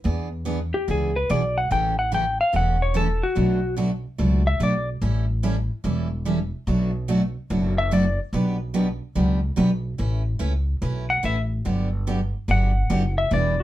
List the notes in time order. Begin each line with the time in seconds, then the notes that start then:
0.04 E2 E3 B3 D4 G#4
0.45 E3 B3 D4 G#4
0.74 G4
0.88 C#2 E3 B3 D4 G#4
1.16 B4
1.30 B1 E3 B3 D4 G#4 D5
1.58 F#5
1.71 A1 C#3 E3 A3 C#4 A4 G5
1.99 F#5
2.12 C#3 E3 A3 C#4 A4 G5
2.41 F5
2.53 E1 C#3 E3 A3 C#4 A4 F#5
2.82 C#5
2.94 C#3 E3 A3 C#4 A4
3.23 F#4
3.35 B1 B2 F#3 A3 D4 F#4
3.77 B2 F#3 A3 D4 F#4
4.18 C#2 B2 F#3 A3 D4 F#4
4.47 E5
4.60 B1 B2 F#3 A3 D4 F#4 D5
5.02 A1 E3 G3 C#4 E4 A4
5.43 E3 G3 C#4 E4 A4
5.84 E1 E3 G3 C#4 E4 A4
6.25 E3 G3 C#4 E4 A4
6.67 B1 B2 F#3 A3 D4 F#4
7.08 B2 F#3 A3 D4 F#4
7.50 F#1 B2 F#3 A3 D4 F#4
7.78 E5
7.91 B2 F#3 A3 D4 F#4 D5
8.33 B1 B2 F#3 B3 D4 G4 B4
8.74 B2 F#3 B3 D4 G4 B4
9.15 C#2 B2 F#3 B3 D4 G4 B4
9.56 B1 B2 F#3 B3 D4 G4 B4
9.98 A1 A3 C#4 E4 B4
10.39 C#2 A3 C#4 E4 B4
10.82 B1 A3 C#4 E4 B4
11.10 F#5
11.23 A1 A3 C#4 E4 B4 E5
11.65 G1 D3 F#3 B3 D4 G4
12.07 D3 F#3 B3 D4 G4
12.48 G1 D3 F#3 B3 D4 G4 F#5
12.90 F#1 D3 F#3 B3 D4 G4
13.18 E5
13.31 E1 E3 G3 D4 E4 B4 D5